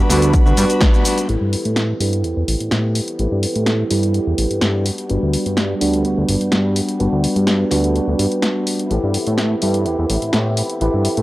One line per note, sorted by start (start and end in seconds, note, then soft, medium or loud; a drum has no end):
0.00 0.10 D4 medium
0.00 1.30 B4 medium
0.00 1.30 B5 medium
0.09 0.39 D2 loud
0.09 1.26 G3 medium
0.09 1.26 B3 medium
0.09 0.46 B3 medium
0.09 1.26 D4 medium
0.09 0.47 D4 medium
0.09 1.26 F#4 medium
0.09 0.44 F#4 medium
0.09 1.27 B4 medium
0.09 snare soft
0.09 open hi-hat loud
0.09 shaker medium
0.22 closed hi-hat medium
0.22 shaker soft
0.33 kick loud
0.33 closed hi-hat medium
0.33 shaker soft
0.46 0.53 D2 medium
0.46 0.58 D4 soft
0.46 0.57 F#4 medium
0.46 shaker soft
0.57 0.65 G2 loud
0.57 0.70 B3 medium
0.57 0.71 D4 medium
0.57 0.68 F#4 medium
0.57 open hi-hat loud
0.57 shaker medium
0.69 0.81 D4 soft
0.69 0.81 F#4 medium
0.69 closed hi-hat medium
0.69 shaker soft
0.81 1.03 B3 medium
0.81 1.05 D4 loud
0.81 1.06 F#4 loud
0.81 kick loud
0.81 snare loud
0.81 closed hi-hat medium
0.81 shaker soft
0.94 shaker soft
1.05 1.17 B3 medium
1.05 1.18 D4 medium
1.05 1.16 F#4 medium
1.05 open hi-hat loud
1.05 shaker medium
1.17 1.29 F#4 medium
1.17 closed hi-hat medium
1.17 shaker soft
1.28 1.37 A1 loud
1.28 2.00 E3 medium
1.28 8.92 G3 medium
1.28 2.02 B3 medium
1.28 2.00 C4 medium
1.28 1.98 E4 medium
1.28 1.98 G4 medium
1.28 1.98 A4 medium
1.28 1.98 B4 medium
1.28 8.92 G6 medium
1.28 closed hi-hat soft
1.41 1.56 G2 medium
1.53 open hi-hat loud
1.65 1.93 A2 loud
1.65 closed hi-hat medium
1.76 snare loud
1.76 closed hi-hat medium
2.00 2.24 G2 loud
2.00 2.23 B3 soft
2.00 2.24 C4 medium
2.00 3.17 E4 medium
2.00 2.24 G4 soft
2.00 3.17 G4 medium
2.00 3.17 A4 medium
2.00 3.17 B4 medium
2.00 open hi-hat loud
2.13 closed hi-hat medium
2.23 2.34 E2 soft
2.23 2.70 E3 medium
2.23 2.72 B3 medium
2.23 2.72 C4 medium
2.23 2.74 G4 medium
2.23 closed hi-hat medium
2.37 2.44 E2 medium
2.48 2.56 A1 medium
2.48 open hi-hat loud
2.60 2.70 A2 soft
2.60 closed hi-hat medium
2.71 3.01 A2 medium
2.71 3.17 E3 medium
2.71 3.20 B3 medium
2.71 3.20 C4 medium
2.71 3.23 G4 medium
2.71 snare loud
2.71 closed hi-hat medium
2.95 open hi-hat loud
3.08 closed hi-hat medium
3.18 3.27 A1 loud
3.18 4.13 E3 medium
3.18 4.15 B3 medium
3.18 4.15 C4 medium
3.18 3.88 E4 medium
3.18 3.88 G4 medium
3.18 3.88 A4 medium
3.18 3.88 B4 medium
3.18 closed hi-hat soft
3.23 4.16 G4 loud
3.32 3.46 G2 medium
3.43 open hi-hat loud
3.56 3.84 A2 loud
3.56 closed hi-hat medium
3.66 snare loud
3.66 closed hi-hat soft
3.90 4.20 G2 loud
3.90 4.85 E4 medium
3.90 4.85 G4 medium
3.90 4.85 A4 medium
3.90 4.85 B4 medium
3.90 open hi-hat loud
4.03 closed hi-hat medium
4.14 4.60 E3 medium
4.14 4.62 B3 medium
4.14 4.62 C4 medium
4.14 4.64 G4 medium
4.14 closed hi-hat soft
4.27 4.34 E2 medium
4.38 4.46 A1 medium
4.38 open hi-hat loud
4.51 4.60 G2 soft
4.51 closed hi-hat medium
4.61 4.91 G2 medium
4.61 4.86 E3 medium
4.61 4.86 B3 medium
4.61 4.87 C4 medium
4.61 4.84 G4 medium
4.61 snare loud
4.61 closed hi-hat medium
4.85 6.05 D4 medium
4.85 6.04 F#4 medium
4.85 open hi-hat loud
4.90 6.04 B3 medium
4.98 closed hi-hat medium
5.09 5.18 G1 loud
5.09 5.79 G3 medium
5.09 5.78 B3 medium
5.09 5.79 D4 medium
5.09 5.79 F#4 medium
5.09 5.79 B4 medium
5.09 closed hi-hat soft
5.23 5.37 D2 medium
5.33 open hi-hat loud
5.46 5.74 G2 loud
5.46 closed hi-hat medium
5.57 snare loud
5.57 closed hi-hat soft
5.80 6.05 D2 loud
5.80 6.98 G3 medium
5.80 6.97 B3 medium
5.80 6.97 D4 medium
5.80 6.98 F#4 medium
5.80 6.98 B4 medium
5.80 open hi-hat loud
5.93 closed hi-hat medium
6.04 6.15 D2 soft
6.04 6.51 B3 medium
6.04 6.52 D4 medium
6.04 6.53 F#4 medium
6.04 closed hi-hat soft
6.18 6.25 D2 medium
6.29 6.37 G1 medium
6.29 open hi-hat loud
6.41 6.50 G2 soft
6.41 closed hi-hat medium
6.52 6.81 G2 medium
6.52 6.99 B3 medium
6.52 6.99 D4 medium
6.52 7.00 F#4 medium
6.52 snare loud
6.52 closed hi-hat soft
6.76 open hi-hat loud
6.89 closed hi-hat medium
6.99 7.08 G1 loud
6.99 7.69 G3 medium
6.99 7.69 B3 medium
6.99 7.94 B3 medium
6.99 7.69 D4 medium
6.99 7.72 D4 medium
6.99 7.69 F#4 medium
6.99 7.70 F#4 medium
6.99 7.69 B4 medium
6.99 closed hi-hat soft
7.13 7.27 D2 medium
7.24 open hi-hat loud
7.36 7.65 G2 loud
7.36 closed hi-hat medium
7.47 snare loud
7.47 closed hi-hat soft
7.70 8.00 D2 loud
7.70 8.88 G3 medium
7.70 8.87 B3 medium
7.70 8.88 D4 medium
7.70 7.95 D4 soft
7.70 7.95 F#4 medium
7.70 8.88 F#4 medium
7.70 8.88 B4 medium
7.70 snare soft
7.70 open hi-hat loud
7.84 closed hi-hat medium
7.95 8.42 B3 medium
7.95 8.43 D4 medium
7.95 8.44 F#4 medium
7.95 closed hi-hat soft
8.08 8.15 D2 medium
8.19 8.27 G2 medium
8.19 open hi-hat loud
8.32 closed hi-hat medium
8.42 8.91 B3 medium
8.42 8.91 D4 medium
8.42 8.92 F#4 medium
8.42 snare loud
8.42 closed hi-hat soft
8.67 open hi-hat loud
8.79 closed hi-hat medium
8.89 8.99 A1 medium
8.89 9.84 E3 medium
8.89 9.86 B3 medium
8.89 9.86 C4 medium
8.89 11.22 E4 medium
8.89 9.59 E4 medium
8.89 9.60 G4 medium
8.89 9.60 A4 medium
8.89 9.60 B4 medium
8.89 11.22 E5 medium
8.89 closed hi-hat soft
8.94 9.88 G4 medium
9.04 9.18 G2 medium
9.14 open hi-hat loud
9.27 9.55 A2 loud
9.27 closed hi-hat medium
9.38 snare loud
9.38 closed hi-hat soft
9.62 9.86 G2 loud
9.62 10.79 E4 medium
9.62 10.79 G4 medium
9.62 10.79 A4 medium
9.62 10.79 B4 medium
9.62 open hi-hat loud
9.74 closed hi-hat medium
9.85 9.96 E2 soft
9.85 10.32 E3 medium
9.85 10.34 B3 medium
9.85 10.34 C4 medium
9.85 10.36 G4 medium
9.85 closed hi-hat soft
9.99 10.06 E2 medium
10.10 10.18 A1 medium
10.10 open hi-hat loud
10.22 10.31 A2 soft
10.22 closed hi-hat medium
10.33 10.62 A2 medium
10.33 10.79 E3 medium
10.33 10.81 B3 medium
10.33 10.82 C4 medium
10.33 10.84 G4 medium
10.33 snare loud
10.33 closed hi-hat soft
10.57 open hi-hat loud
10.70 closed hi-hat medium
10.80 10.89 A1 loud
10.80 11.22 E3 medium
10.80 11.22 B3 medium
10.80 11.22 C4 medium
10.80 11.22 E4 medium
10.80 11.22 G4 medium
10.80 11.22 A4 medium
10.80 11.22 B4 medium
10.80 closed hi-hat soft
10.85 11.22 G4 medium
10.94 11.08 G2 medium
11.05 open hi-hat medium
11.17 11.22 A2 loud
11.17 closed hi-hat medium